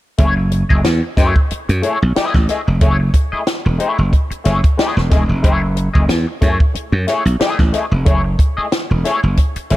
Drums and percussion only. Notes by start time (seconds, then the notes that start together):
0.18 kick, closed hi-hat
0.52 closed hi-hat
0.70 kick
0.85 snare, closed hi-hat
1.17 kick, snare, closed hi-hat
1.36 kick
1.51 closed hi-hat
1.69 closed hi-hat
1.83 closed hi-hat
2.16 snare, closed hi-hat
2.34 kick, snare
2.49 snare, closed hi-hat
2.81 kick, closed hi-hat
3.14 kick, closed hi-hat
3.47 snare, closed hi-hat
3.80 closed hi-hat
4.13 kick, closed hi-hat
4.31 closed hi-hat
4.45 snare, closed hi-hat
4.64 kick, closed hi-hat
4.79 snare, closed hi-hat
4.98 snare
5.11 kick, snare, closed hi-hat
5.44 kick, closed hi-hat
5.77 closed hi-hat
5.95 kick
6.09 snare, closed hi-hat
6.42 kick, snare, closed hi-hat
6.60 kick
6.75 closed hi-hat
7.08 snare, closed hi-hat
7.26 closed hi-hat
7.41 snare, closed hi-hat
7.59 kick, snare
7.74 snare, closed hi-hat
8.06 kick, closed hi-hat
8.39 kick, closed hi-hat
8.72 snare, closed hi-hat
9.05 snare, closed hi-hat
9.37 kick, closed hi-hat
9.56 closed hi-hat
9.70 snare, closed hi-hat